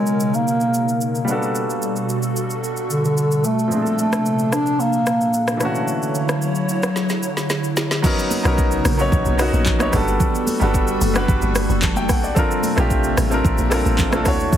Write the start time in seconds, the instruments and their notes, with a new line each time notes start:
Already playing: grand piano B2 F#3 C#4 D#4 A#4, analog synth pad B2 C#3 D#4 A#4, bass clarinet G#3
0.06 shaker
0.20 shaker
0.34 bass clarinet A#3, shaker
0.48 shaker
0.60 shaker
0.74 shaker
0.89 shaker
1.01 shaker
1.15 shaker
1.25 analog synth pad B2 G3 F#4 A4, grand piano G3 B3 D4, shaker
1.31 grand piano F#4 A4
1.43 shaker
1.55 shaker
1.70 shaker
1.82 shaker
1.96 shaker
2.09 shaker
2.23 shaker
2.36 shaker
2.50 shaker
2.64 shaker
2.77 shaker
2.90 bass clarinet D3, shaker
3.05 bass clarinet D3, shaker
3.17 shaker
3.31 shaker
3.44 bass clarinet A3, shaker
3.59 shaker
3.68 grand piano A#2 F3 C4, analog synth pad A#2 C3 D4, shaker
3.74 grand piano D4 G#4
3.82 grand piano A4
3.86 shaker
3.99 bass clarinet A3, shaker
4.12 cross-stick, shaker
4.26 shaker
4.39 shaker
4.52 bass clarinet D4, cross-stick, shaker
4.66 shaker
4.80 bass clarinet A#3, shaker
4.93 shaker
5.06 cross-stick, shaker
5.21 shaker
5.33 shaker
5.48 cross-stick, shaker
5.57 analog synth pad D3 F#3 E4 C#5, grand piano E3 A3 C#4, cross-stick, shaker
5.63 grand piano D4 F#4
5.75 shaker
5.88 shaker
6.03 shaker
6.15 shaker
6.29 cross-stick, shaker
6.42 shaker
6.55 shaker
6.69 shaker
6.83 cross-stick, shaker
6.96 snare, shaker
7.09 snare, shaker
7.23 shaker
7.37 snare, shaker
7.50 snare, shaker
7.64 shaker
7.77 snare, shaker
7.91 snare, shaker
8.02 analog synth pad C#3 B3 D#4 A#4, grand piano F#3 B3 C#4 D#4 A#4, kick, crash, low conga, shaker
8.19 shaker
8.31 open hi-hat, high conga, shaker
8.43 log drum bass B1, grand piano F#3 B3 C#4 D#4 A#4, cross-stick, shaker
8.58 kick, shaker
8.71 shaker
8.85 log drum bass A#1, cross-stick, open hi-hat, high conga, shaker
8.97 grand piano F#3 B3 C#4 D#4 C#5, shaker
9.12 log drum bass A#1, kick, low conga, shaker
9.25 log drum bass B1, high conga, shaker
9.38 grand piano F#3 B3 C#4 D#4 F#4, cross-stick, open hi-hat, high conga, shaker
9.53 log drum bass A#1, high conga, shaker
9.66 kick, clap, low conga, shaker
9.79 grand piano F#3 B3 C#4 D#4, cross-stick, high conga, shaker
9.83 grand piano C#5
9.91 log drum bass G1, grand piano G3 B3 D4 F#4 A4, analog synth pad G3 F#4 A4, kick, cross-stick, open hi-hat, high conga, shaker
10.08 shaker
10.20 kick, low conga, shaker
10.35 shaker
10.47 open hi-hat, high conga, shaker
10.60 log drum bass G1, grand piano G3 B3 D4 F#4 A4, shaker
10.74 kick, shaker
10.88 shaker
11.01 log drum bass F#1, open hi-hat, high conga, shaker
11.14 grand piano G3 B3 D4 F#4 B4, cross-stick, shaker
11.28 log drum bass G1, kick, low conga, shaker
11.42 log drum bass G1, high conga, shaker
11.55 cross-stick, open hi-hat, high conga, shaker
11.69 log drum bass F#1, high conga, shaker
11.82 grand piano A5, kick, clap, low conga, shaker
11.95 grand piano G5, high conga, shaker
12.09 log drum bass B1, grand piano F#5, kick, cross-stick, open hi-hat, high conga, shaker
12.24 grand piano D5, shaker
12.35 analog synth pad C3 C4, grand piano C4 D4 F4 A4, kick, low conga, shaker
12.39 grand piano A#4
12.51 shaker
12.63 open hi-hat, high conga, shaker
12.76 log drum bass A#1, grand piano A3 C4 D4 F4 G4, cross-stick, shaker
12.90 kick, shaker
13.04 shaker
13.17 log drum bass A1, cross-stick, open hi-hat, high conga, shaker
13.30 grand piano C4 D4 F4 A4 A#4, shaker
13.44 log drum bass A1, kick, low conga, shaker
13.58 log drum bass A#1, high conga, shaker
13.70 grand piano C4 D4 F4 A4, cross-stick, open hi-hat, high conga, shaker
13.74 grand piano A#4
13.86 log drum bass A1, high conga, shaker
13.98 kick, clap, low conga, shaker
14.11 grand piano A3 C4 D4 F4, cross-stick, high conga, shaker
14.15 grand piano A4
14.24 log drum bass D2, analog synth pad E3 F#3 E4, grand piano A3 D4 E4 F#4 C#5, kick, cross-stick, open hi-hat, high conga, shaker
14.40 shaker
14.52 kick, low conga, shaker